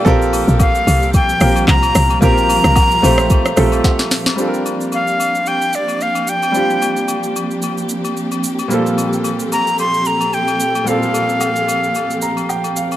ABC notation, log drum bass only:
X:1
M:4/4
L:1/16
Q:"Swing 16ths" 1/4=111
K:Bb
V:1 name="Log drum bass" clef=bass
B,,,3 B,,,3 C,,4 B,,,2 C,,2 C,,2 | B,,,3 C,,3 B,,,3 z B,,,2 z4 | z16 | z16 |
z16 | z16 |]